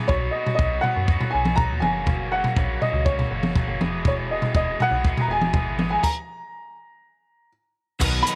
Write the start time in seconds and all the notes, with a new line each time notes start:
0.07 B1 B2 F#3 B3 D#4 F#4 C#5, kick, floor tom
0.31 D#4 F#4 D#5
0.35 B3
0.46 floor tom
0.55 B1 B2 F#3 B3 D#5, kick
0.59 D#4 F#4
0.81 D#4 F#4 F#5, floor tom
0.85 B3
0.96 F#2
1.06 B2 F#3 B3 D#4 F#4, kick
1.20 floor tom
1.31 B1 D#4 F#4 G#5
1.35 B3
1.45 mid tom
1.56 F#3 B3 D#4 A#5, kick, floor tom
1.60 F#4
1.70 D#2
1.80 F#1 A#3 C#4 F#4 G#5, mid tom
1.84 F#2 C#3 F#3
2.06 F#2 C#3 F#3 A#3 C#4 F#4, kick, floor tom
2.32 F#3 A#3 C#4 F#4 F#5
2.44 floor tom
2.56 A#1 F#2 C#3 F#3 A#3 C#4 F#4, kick
2.82 F#3 A#3 C#4 F#4 D#5, floor tom
2.93 C#2
3.05 F#2 C#3 F#3 A#3 C#4 C#5, kick
3.10 F#4
3.19 floor tom
3.31 F#1 F#3 A#3 C#4 F#4
3.43 mid tom
3.55 F#3 A#3 C#4 F#4, kick, floor tom
3.68 F#1
3.80 E1 E2 B2 E3 G#3 B3 G#4, mid tom
4.04 E2 B2 E3 G#3 B3 G#4 C#5, kick, floor tom
4.31 E3 G#3 B3 G#4 D#5
4.42 floor tom
4.54 E1 E2 B2 E3 G#3 B3 D#5, kick
4.59 G#4
4.80 E3 G#3 B3 G#4 F#5, floor tom
4.91 B1
5.05 E2 B2 E3 G#3 B3 G#4, kick
5.17 A#5, floor tom
5.28 E1 G#3 B3 G#4 G#5
5.33 E3
5.41 mid tom
5.53 E3 G#3 B3 G#4, kick, floor tom
5.65 G#1
5.79 E3 G#3 B3 G#4, mid tom
5.90 G#5
6.03 A#5, kick, crash
8.00 B1 B2 D#3 F#3 B3 D#4 A#4 B4 F#5 D#6, kick, crash, shaker
8.23 B5, shaker
8.27 B2 D#3 F#3 B3 D#4 A#4 B4, closed hi-hat